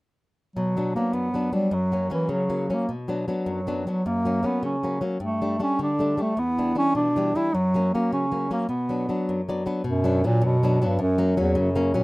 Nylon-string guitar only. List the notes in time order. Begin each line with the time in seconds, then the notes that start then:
0.57 B2
0.77 F#3 B3 D4
0.96 F#3 B3 D4
1.13 F#2
1.34 F#3 B3 D4
1.53 F#3 B3 D4
1.71 F#2
1.92 F#3 A#3 C#4
2.10 F#3 A#3 C#4
2.29 C#3
2.50 F#3 A#3 C#4
2.70 F#3 A#3 C#4
2.89 B2
3.08 F#3 B3 D4
3.28 F#3 B3 D4
3.46 F#2
3.67 F#3 B3 D4
3.87 F#3 B3 D4
4.06 F#2
4.25 F#3 A#3 C#4
4.43 F#3 A#3 C#4
4.63 C#3
4.83 F#3 A#3 C#4
5.01 F#3 A#3 C#4
5.20 G2
5.42 G3 A3 D4
5.60 G3 A3 D4
5.79 D3
5.99 G3 A3 D4
6.17 G3 A3 D4
6.37 E2
6.58 E3 G3 D4
6.75 E3 G3 D4
6.95 B2
7.16 E3 G3 D4
7.35 E3 G3 D4
7.54 F#2
7.74 F#3 A#3 C#4
7.95 F#3 A#3 C#4
8.13 C#3
8.32 F#3 A#3 C#4
8.51 F#3 A#3 C#4
8.69 B2
8.89 F#3 B3 D4
9.09 F#3 B3 D4
9.29 F#2
9.49 F#3 B3 D4 D5
9.66 F#3 B3 D4 B4
9.84 B2
10.04 F#3 B3 D4
10.24 F#3 B3 D4
10.42 F#2
10.63 F#3 B3 D4
10.82 F#3 B3 D4
10.99 F#2
11.18 F#3 A#3 C#4
11.37 F#3 A#3 C#4
11.55 C#3
11.75 F#3 A#3 C#4
11.94 F#3 A#3 C#4